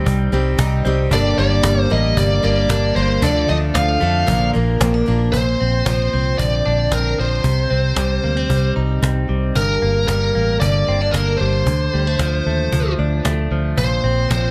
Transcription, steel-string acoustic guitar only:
Already playing: G3 C4 D#4 G4
0.32 G3 C4 D#4 G4
0.58 G3 C4 D#4 G4
0.85 G3 C4 D#4 G4
1.12 G2 D3 G3 A#3 D4 G4
1.38 G3 A#3 D4 G4
1.90 G3 A#3 D4 G4
2.43 G3 A#3 D4 G4
2.69 G3 A#3 D4 G4
2.96 G3 A#3 D4 G4
3.22 D3 F3 D4 F4 A4
3.48 F3 D4 F4 A4
4.00 F3 D4 F4 A4
4.27 A#2 D3 F3 A#3 D4 A#4
4.54 F3 A#3 D4 A#4
4.81 F3 A#3 D4 A#4
5.06 F3 A#3 D4 A#4

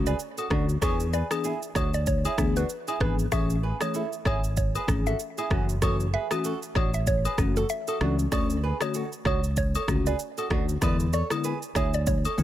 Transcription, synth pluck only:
0.07 D5
1.13 D5
1.76 C#5
1.94 D5
2.07 C#5
2.57 B4
3.01 B4
3.32 E5
3.82 C#5
4.26 C#5
4.57 C#5
5.07 E5
6.14 E5
6.76 C#5
6.94 E5
7.07 C#5
7.57 A4
7.70 E5
8.32 D5
8.82 C#5
9.26 C#5
9.58 C#5
10.07 D5
11.14 D5
11.76 C#5
11.94 D5
12.07 C#5

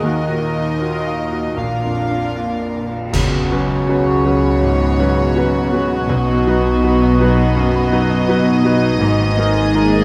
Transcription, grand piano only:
0.03 D#2
0.29 A#2
0.54 F4
0.81 F#4
1.06 F5
1.31 F#4
1.57 A#1
1.84 F2
2.10 D4
2.36 F4
2.61 D5
2.88 F4
3.13 C#2
3.51 F#3 C#4 B4
3.89 F#3 C#4 B4
4.25 F#3 C#4 B4
4.63 G#2
4.99 F#3 C#4 B4
5.36 F#3 C#4 B4
5.73 F#3 C#4 B4
6.10 B1
6.47 F#3 D#4 B4
6.84 F#3 D#4 B4
7.20 F#3 D#4 B4
7.56 F#2
7.92 F#3 D#4 B4
8.29 F#3 D#4 B4
8.65 F#3 D#4 B4
9.01 G#2
9.38 G#3 D#4 A#4
9.74 G#3 D#4 A#4

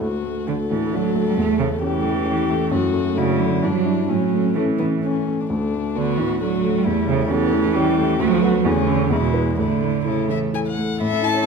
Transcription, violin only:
0.01 F#4
0.47 A4
1.82 G4
2.73 F#4
3.17 E4
3.64 D4
4.10 C#4
4.56 A3
4.79 B3
5.04 C#4
5.41 D4
5.51 D4
5.96 F#4
6.41 F#4
6.86 E4
7.31 A4
7.75 G4
8.20 F#4
8.66 C#4
9.12 E4
9.59 E4
10.05 E4
10.30 E5
10.54 G#5
10.68 F#5
11.02 E5
11.24 A5

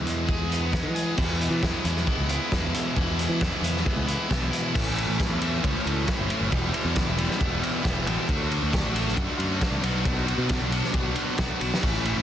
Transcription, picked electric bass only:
0.04 E2
0.83 E3
1.18 E2
1.50 E3
1.63 E2
1.85 E2
2.17 C#2
2.52 E2
2.97 E2
3.29 E3
3.41 E2
3.61 E2
3.96 C#2
4.30 B1
4.75 A1
5.08 A1
5.30 E2
5.64 C#2
5.86 C#2
6.19 F#1
6.41 F#1
6.53 E1
6.85 E2
7.07 E1
7.41 E1
7.85 E1
8.06 A1
8.29 D2
8.62 D2
8.84 A1
9.17 F#2
9.38 F#2
9.71 C2
9.83 B1
10.38 B2
10.60 B1
10.94 B1
11.39 B1
11.61 B1
11.83 A1
12.16 A1

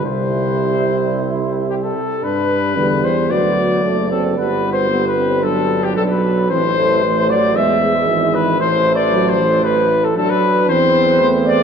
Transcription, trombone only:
0.04 C3
2.23 G3
2.77 D3
3.04 E3
3.31 F#3
4.38 G3
4.91 G3
5.43 F#3
6.51 E3
7.03 A3
7.56 G#3
8.08 E3
8.59 E3
9.11 F#3
9.38 E3
9.64 E3
10.16 F#3
10.69 E3
11.20 A3

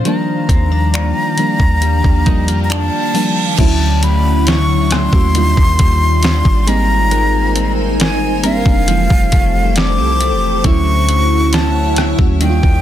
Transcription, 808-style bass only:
0.49 D#2
1.60 D#2
2.05 D#2
2.49 F2
3.59 D2
5.13 D#2
5.57 D#2
5.80 D#2
6.45 G#1
8.22 G1
8.66 F1
9.11 F1
9.33 F1
9.98 C2
10.32 F1
10.65 D2
12.19 D#2
12.63 D#2

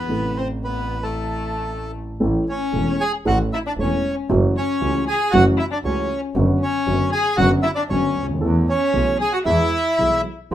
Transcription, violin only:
Already playing: B3
0.38 C4
0.64 B3
1.03 A3
2.51 C#4
3.02 G#4
3.27 F#4
3.54 E4
3.67 D4
3.80 C#4
4.55 C#4
5.08 G#4
5.31 F#4
5.57 E4
5.71 D4
5.84 C#4
6.60 C#4
7.12 G#4
7.37 F#4
7.63 E4
7.76 D4
7.89 C#4
8.69 C#4
9.19 G#4
9.34 F#4
9.46 E4

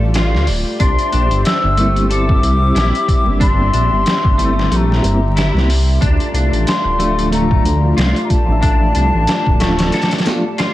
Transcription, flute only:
0.80 C6
1.46 E6
2.11 D6
3.41 C6
4.72 A#5 C6
6.67 C6
7.33 A#5
8.24 A#5
8.31 A5

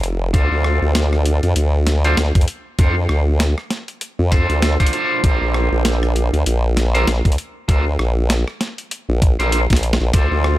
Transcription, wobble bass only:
Already playing: F1
0.34 D2
0.51 D2
0.82 D2
1.43 F2
1.56 D2
2.17 D2
2.35 F2
2.79 F2
3.09 D2
4.19 F2
4.49 D2
5.24 A#1
5.41 A#1
5.72 A#1
6.33 D2
6.46 A#1
7.07 A#1
7.25 D2
7.69 D2
7.99 A#1
9.09 A#1
9.39 A#1
9.70 A#1
10.01 A#1
10.14 D2
10.31 D2

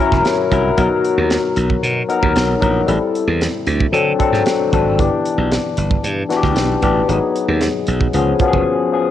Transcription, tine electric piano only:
0.00 F#3 C#4 E4 A#4
0.51 F#3 C#4 E4 A#4
0.77 F#3 B3 D#4 A#4
2.08 F#3 B3 D#4 A#4
2.60 F#3 B3 D#4 A#4
2.86 G3 C4 E4 A4
3.92 F#3 C4 D4 A4
4.19 F#3 C4 D4 A4
4.72 F#3 C4 D4 A4
4.99 E3 B3 D4 G4
6.29 E3 B3 D4 F#4
6.36 G4
6.82 E3 B3 D4 G4
7.08 F#3 B3 D#4 G#4
8.14 F3 B3 C#4 G#4
8.41 F3 B3 C#4 F#4
8.48 G#4
8.93 F3 B3 C#4 G#4

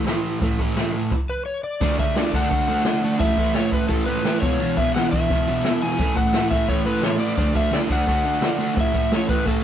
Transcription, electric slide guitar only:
1.30 B4
1.46 C#5
1.64 D5
2.00 E5
2.17 D5
2.35 F#5
3.20 E5
3.56 C#5
3.74 B4
3.89 A4
4.06 B4
4.41 C#5
4.77 E5
4.95 F#5
5.11 E5
5.82 G#5
6.17 F#5
6.51 E5
6.68 C#5
6.86 B4
7.03 C#5
7.20 D5
7.56 E5
7.75 D5
7.92 F#5
8.80 E5
9.15 C#5
9.30 B4
9.48 A4

